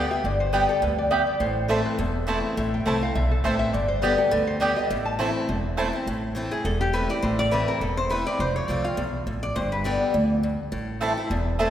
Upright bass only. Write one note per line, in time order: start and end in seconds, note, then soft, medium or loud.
0.24 0.65 G1 medium
0.82 1.23 D2 medium
1.40 1.81 A1 loud
1.99 2.40 E1 loud
2.57 2.78 A1 medium
2.86 3.11 C2 medium
3.15 3.40 B1 medium
3.45 3.69 A1 medium
3.74 4.14 G1 medium
4.32 4.73 D2 loud
4.90 5.31 A1 medium
5.49 5.89 E1 loud
6.07 6.47 A1 medium
6.65 7.05 E1 medium
7.23 7.64 A1 loud
7.81 8.22 E1 medium
8.39 8.60 F1 medium
8.69 8.93 C2 medium
8.98 9.22 B1 medium
9.26 9.51 A1 medium
9.56 9.97 G1 loud
10.14 10.55 D2 medium
10.72 11.13 A1 medium
11.30 11.70 E1 medium